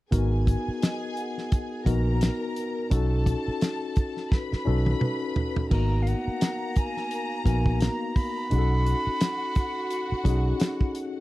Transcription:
0.11 0.54 G#1 loud
0.11 1.32 B3 medium
0.11 1.32 D#4 medium
0.11 1.32 F#4 medium
0.11 1.83 G#4 medium
0.11 1.33 A#4 medium
0.11 1.83 G#5 medium
0.11 kick loud
0.11 closed hi-hat medium
0.47 kick medium
0.47 closed hi-hat medium
0.68 muted fingered electric bass stroke soft
0.82 2.27 D#5 soft
0.82 snare loud
0.82 closed hi-hat medium
1.17 2.63 F#5 medium
1.17 closed hi-hat medium
1.38 snare soft
1.52 2.97 G#5 soft
1.52 kick medium
1.52 closed hi-hat medium
1.86 2.28 A#1 medium
1.86 2.77 B3 medium
1.86 2.78 D#4 medium
1.86 2.78 F#4 medium
1.86 2.89 A#4 medium
1.86 2.78 A#4 medium
1.86 2.89 A#5 medium
1.86 kick medium
1.86 closed hi-hat medium
2.21 snare loud
2.21 closed hi-hat medium
2.56 closed hi-hat medium
2.90 3.33 B1 loud
2.90 4.11 C#4 medium
2.90 4.11 D#4 medium
2.90 4.12 F#4 medium
2.90 4.28 A4 medium
2.90 4.12 A4 medium
2.90 4.28 A5 medium
2.90 kick loud
2.90 closed hi-hat medium
3.26 kick medium
3.26 closed hi-hat medium
3.48 muted fingered electric bass stroke soft
3.61 snare loud
3.61 closed hi-hat medium
3.96 kick medium
3.96 closed hi-hat medium
4.17 snare soft
4.31 5.68 B4 medium
4.31 5.68 B5 medium
4.31 kick medium
4.31 snare soft
4.52 muted fingered electric bass stroke soft
4.52 snare soft
4.65 4.93 B1 medium
4.65 5.57 C#4 medium
4.65 5.57 D#4 medium
4.65 5.57 F#4 medium
4.65 5.58 A4 medium
4.86 high tom medium
5.01 mid tom medium
5.36 floor tom medium
5.56 floor tom medium
5.70 6.13 G#1 medium
5.70 8.47 A#3 medium
5.70 6.91 B3 medium
5.70 6.91 D#4 medium
5.70 6.91 F#4 medium
5.70 6.92 A#4 medium
5.70 8.47 A#5 medium
5.70 6.04 A#5 medium
5.70 kick medium
5.70 crash medium
6.02 6.09 F5 medium
6.07 6.79 F#5 medium
6.07 closed hi-hat medium
6.28 muted fingered electric bass stroke soft
6.41 snare medium
6.41 closed hi-hat medium
6.76 7.45 G#5 medium
6.76 kick medium
6.76 closed hi-hat medium
6.97 snare soft
7.11 closed hi-hat medium
7.45 7.87 A#1 medium
7.45 8.36 B3 medium
7.45 8.37 D#4 medium
7.45 8.37 F#4 medium
7.45 8.37 A#4 medium
7.45 7.82 G#5 medium
7.45 kick medium
7.45 closed hi-hat medium
7.66 kick medium
7.81 8.17 A#5 medium
7.81 snare loud
7.81 closed hi-hat medium
8.16 10.95 B5 medium
8.16 kick medium
8.16 open hi-hat soft
8.50 8.93 B1 loud
8.50 9.71 C#4 medium
8.50 9.71 D#4 medium
8.50 11.20 F#4 medium
8.50 9.71 F#4 medium
8.50 8.59 G#4 medium
8.50 11.20 F#5 medium
8.50 closed hi-hat medium
8.59 9.75 A4 medium
8.86 closed hi-hat medium
9.07 muted fingered electric bass stroke soft
9.21 snare loud
9.21 closed hi-hat medium
9.55 kick medium
9.55 closed hi-hat medium
9.91 closed hi-hat medium
10.12 muted fingered electric bass stroke soft
10.24 10.52 B1 medium
10.24 11.16 C#4 medium
10.24 11.16 D#4 medium
10.24 11.17 F#4 medium
10.24 11.17 G#4 medium
10.24 kick medium
10.24 closed hi-hat medium
10.60 snare loud
10.60 closed hi-hat medium
10.81 kick medium
10.95 closed hi-hat medium

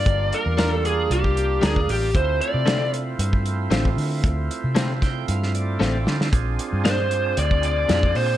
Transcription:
0.00 2.10 G3 medium
0.00 2.11 A#3 medium
0.00 2.11 D4 medium
0.00 2.11 F4 medium
0.00 0.34 D5 medium
0.06 0.30 G1 medium
0.06 kick loud
0.06 closed hi-hat medium
0.32 0.73 A#4 medium
0.32 closed hi-hat medium
0.46 1.06 E2 medium
0.58 0.74 G3 medium
0.58 0.74 D4 medium
0.58 0.75 F4 medium
0.58 0.75 A#4 medium
0.58 snare loud
0.58 closed hi-hat medium
0.73 0.86 A4 medium
0.85 1.12 G#4 medium
0.85 closed hi-hat medium
1.10 1.58 C2 medium
1.10 1.65 G4 medium
1.10 closed hi-hat medium
1.24 kick medium
1.37 closed hi-hat soft
1.62 1.87 D2 medium
1.62 1.78 G3 medium
1.62 1.79 D4 medium
1.62 1.79 F4 medium
1.62 1.79 A#4 medium
1.62 snare loud
1.62 closed hi-hat medium
1.66 1.90 G#4 medium
1.76 kick medium
1.88 2.12 A1 medium
1.88 2.14 G4 medium
1.88 open hi-hat medium
2.15 2.39 D2 medium
2.15 6.29 A3 medium
2.15 6.29 C4 medium
2.15 6.29 E4 medium
2.15 6.30 F4 medium
2.15 2.42 C5 medium
2.15 kick loud
2.15 closed hi-hat medium
2.41 2.90 D5 medium
2.41 closed hi-hat medium
2.54 3.15 C3 medium
2.66 2.83 D3 medium
2.66 2.83 A3 medium
2.66 2.83 C4 medium
2.66 2.84 F4 medium
2.66 snare loud
2.66 closed hi-hat medium
2.94 closed hi-hat medium
3.19 3.67 G2 medium
3.19 closed hi-hat medium
3.33 kick medium
3.46 closed hi-hat medium
3.71 3.95 A1 medium
3.71 3.87 D3 medium
3.71 3.88 A3 medium
3.71 3.88 C4 medium
3.71 3.88 F4 medium
3.71 snare medium
3.71 closed hi-hat medium
3.85 kick medium
3.97 4.21 D3 medium
3.97 open hi-hat medium
4.24 4.48 D2 medium
4.24 kick medium
4.24 closed hi-hat medium
4.51 closed hi-hat medium
4.64 5.24 C3 medium
4.75 4.92 D3 medium
4.75 4.92 A3 medium
4.75 4.92 C4 medium
4.75 4.93 F4 medium
4.75 snare loud
4.75 closed hi-hat medium
5.02 5.26 G5 medium
5.02 kick medium
5.02 snare soft
5.02 closed hi-hat medium
5.28 5.77 G2 medium
5.28 5.52 F5 medium
5.28 closed hi-hat medium
5.43 snare soft
5.54 5.79 D5 medium
5.54 closed hi-hat soft
5.80 6.05 A1 medium
5.80 5.96 D3 medium
5.80 5.97 A3 medium
5.80 5.97 C4 medium
5.80 5.97 F4 medium
5.80 6.29 D5 medium
5.80 snare medium
6.06 6.31 D3 medium
6.06 snare medium
6.21 snare medium
6.32 6.57 A#1 medium
6.32 8.37 C4 medium
6.32 8.37 D4 medium
6.32 8.37 F4 medium
6.32 8.37 G#4 medium
6.32 kick loud
6.32 closed hi-hat medium
6.59 closed hi-hat medium
6.73 7.33 G2 medium
6.84 7.01 A#2 medium
6.84 7.01 G#3 medium
6.84 7.02 D4 medium
6.84 7.02 F4 medium
6.84 7.38 C5 medium
6.84 snare loud
6.84 closed hi-hat medium
7.11 closed hi-hat medium
7.37 7.86 D2 medium
7.37 7.64 D5 medium
7.37 closed hi-hat medium
7.51 kick medium
7.63 8.13 D5 loud
7.63 closed hi-hat medium
7.89 8.14 F2 medium
7.89 8.05 A#2 medium
7.89 8.06 G#3 medium
7.89 8.06 D4 medium
7.89 8.06 F4 medium
7.89 snare medium
7.89 closed hi-hat medium
8.03 kick medium
8.15 8.37 A#2 medium
8.15 8.37 C5 medium
8.15 open hi-hat medium

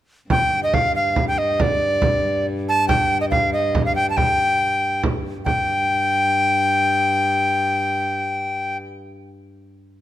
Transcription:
0.30 5.45 G2 medium
0.30 0.60 G5 medium
0.30 frame drum medium
0.63 0.76 D#5 medium
0.74 0.95 F5 medium
0.74 frame drum medium
0.96 1.25 F5 medium
1.16 frame drum medium
1.28 1.40 G5 medium
1.38 1.63 D#5 medium
1.60 2.46 D5 medium
1.60 frame drum medium
2.02 frame drum medium
2.69 2.88 A5 medium
2.88 3.18 G5 medium
2.88 frame drum medium
3.21 3.25 D#5 medium
3.31 3.51 F5 medium
3.31 frame drum medium
3.53 3.83 D#5 medium
3.75 frame drum medium
3.85 3.95 F5 medium
3.95 4.09 G5 medium
4.10 4.18 A5 medium
4.17 5.02 G5 medium
4.17 frame drum medium
5.03 frame drum medium
5.25 frame drum soft
5.45 8.82 G2 medium
5.45 8.77 G5 medium
5.45 frame drum medium

